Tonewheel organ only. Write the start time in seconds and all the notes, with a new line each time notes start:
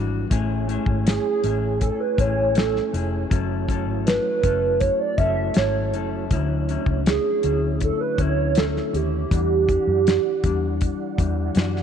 Already playing: D4 E4 F#4 G4
0.28 A3 E4 G#5
0.33 C#5
3.28 A3 E4 F#4
3.33 C#5
6.28 A3 D4 E4
6.33 C#5
9.29 E4 G4 F#5
9.33 D5